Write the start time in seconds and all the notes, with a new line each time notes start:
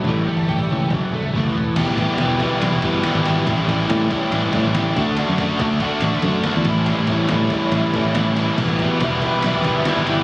Already playing: A4
0.04 A1 A2 E5 G5 C#6, kick, floor tom
0.08 E3 G3
0.27 G1 A2 E3 G3
0.37 floor tom
0.48 A2 E3 G4, kick, snare
0.59 floor tom, mid tom
0.70 C#2 A2 E3 C#4
0.90 F#1 F#2 C#3 F#3 F#5, kick, floor tom
1.03 G1
1.12 F#2 C#3 A3, mid tom
1.23 floor tom
1.34 F#1 A2 E3 A3 B4 A5, kick
1.44 floor tom
1.55 E1 A2 E3
1.76 E1 E2 B2 E3 G3 B3 G4, kick, crash, ride
1.80 E4
1.88 A1
1.98 E2 B2 E3 G3 B3 E4 G4, kick, ride
2.18 E1 E2 B2 E3 G3 B3 G4, kick, snare, ride
2.23 E4
2.40 E2 B2 E3 G3 B3 E4 G4, kick, ride
2.62 B1 E2 B2 E3 G3 B3 E4 G4, ride
2.73 E1, snare
2.82 G1 E2 B2 E3 G3 B3 E4 G4, kick, ride
3.03 E2 B2 E3 G3 G4, snare, ride
3.07 B3 E4
3.15 G#1
3.25 E2 B2 E3 G3 B3 E4 G4, ride
3.47 A1 A2 E3 G3 C#4 E4 G4, kick, ride
3.58 A1
3.68 A2 E3 G3 C#4 E4 G4, kick, ride
3.89 A2 E3 G3 C#4 E4 G4, kick, snare, ride
4.11 A2 E3 G3 C#4 E4 G4, kick, ride
4.31 A1 A2 E3 G3 C#4 E4 G4, ride
4.43 G1, snare
4.52 A2 E3 G3 C#4 E4 G4, kick, ride
4.65 A1
4.74 A2 E3 G3 C#4 E4 G4, snare, ride
4.96 D2 D3 A3 D4 F#4, kick, ride
5.17 D3 A3 D4 F#4, ride
5.29 F#2
5.38 D3 A3 D4 F#4, kick, ride
5.59 D2 D3 A3 D4 F#4, kick, snare, ride
5.71 snare
5.80 D3 A3 D4 F#4, kick, ride
6.00 A1 D3 A3 D4, ride
6.05 F#4
6.13 D2
6.22 F#2 D3 A3 D4 F#4, kick, ride
6.43 D3 A3 D4 F#4, snare, ride
6.56 E2
6.65 A1 A2 E3 G3, kick, ride
6.69 C#4 E4
6.86 A2 E3 G3 C#4 E4, ride
6.98 A1
7.07 A2 E3, kick, ride
7.11 G3 C#4 E4
7.28 A2 E3 G3 C#4 E4, kick, snare, ride
7.40 snare
7.50 A2 E3 G3 C#4 E4, kick, ride
7.72 A1 A2 E3 G3 C#4, ride
7.76 E4
7.93 A2 E3 G3 C#4 E4, kick, ride
8.04 A1
8.15 A2 E3 G3 C#4 E4, snare, ride
8.37 A2 E3 G3 C#4 E4, ride
8.58 E1 E2 B2 E3 G3 B3 E4 B4 E5 G5 D6, kick, crash
8.70 A1
8.79 E2 B2 E3 G3 B3, kick, ride
8.83 E4
9.00 E1 E2 B2 E3 G3 B3 E4, kick, snare, ride
9.22 E2 B2 E3 G3 B3 E4, kick, ride
9.42 B1 E2 B2 E3 G3 B3 E4, ride
9.54 E1
9.64 G1 E2 B2 E3 G3 B3 E4, kick, ride
9.85 E2 B2 E3 G3 B3 E4, snare, ride
9.97 G1
10.07 E2 B2 E3 G3 B3 E4, ride